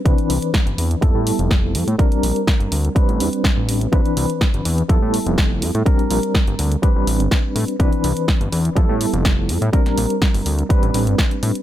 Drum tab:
HH |xxoxxxoxx-oxx-ox|xxoxxxoxxxoxx-ox|xxoxxxoxx-oxx-ox|xxoxxxoxx-oxx-ox|
SD |----o-------o---|----o-------o---|----o-------o---|----o-------o---|
BD |o---o---o---o---|o---o---o---o---|o---o---o---o---|o---o---o---o---|

HH |xxoxxxoxx-oxx-ox|xxoxxooxxxoxxxox|
SD |----o-------o---|-o--o-------o---|
BD |o---o---o---o---|o---o---o---o---|